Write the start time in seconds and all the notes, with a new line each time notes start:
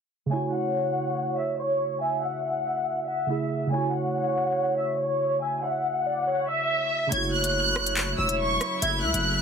0.26 C#3 A3
0.31 E4 C#5 G#5
0.36 F#4
0.52 F#5
1.37 E5
1.59 C#5
2.01 E5 G#5
2.23 F#5
2.65 E5
3.08 E5 F#5
3.27 C#3 A3 E4
3.32 G#4
3.67 C#3 A3
3.71 E4 C#5 G#5
3.77 F#4
3.93 F#5
4.78 E5
4.99 C#5
5.42 E5 G#5
5.63 F#5
6.06 D5
6.27 C#5
6.48 E5
7.07 C#3 A3
7.12 F#1 C#3 F#3 A3 E4 C#5 G#6, closed hi-hat
7.17 F#4
7.33 F#6
7.44 closed hi-hat
7.76 cross-stick
7.86 closed hi-hat
7.97 clap, closed hi-hat
8.18 E1 E6
8.29 closed hi-hat
8.40 C#6
8.61 cross-stick, closed hi-hat
8.82 F#1 E5 G#6, closed hi-hat
9.03 C#2 F#6
9.14 F#1, closed hi-hat